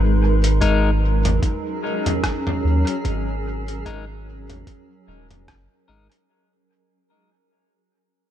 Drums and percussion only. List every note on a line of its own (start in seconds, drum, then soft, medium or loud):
0.44 closed hi-hat medium
0.61 kick loud
0.61 closed hi-hat soft
1.25 closed hi-hat medium
1.25 mid tom medium
1.43 kick loud
1.43 closed hi-hat soft
2.06 closed hi-hat soft
2.06 mid tom medium
2.24 kick loud
2.24 cross-stick medium
2.24 closed hi-hat soft
2.47 mid tom medium
2.87 closed hi-hat medium
3.05 kick loud
3.05 closed hi-hat soft
3.68 closed hi-hat medium
3.86 kick loud
3.86 closed hi-hat soft
4.50 closed hi-hat medium
4.50 mid tom medium
4.67 kick loud
4.67 closed hi-hat soft
5.31 closed hi-hat medium
5.31 mid tom medium
5.48 kick loud
5.48 cross-stick medium
5.48 closed hi-hat soft
6.12 closed hi-hat medium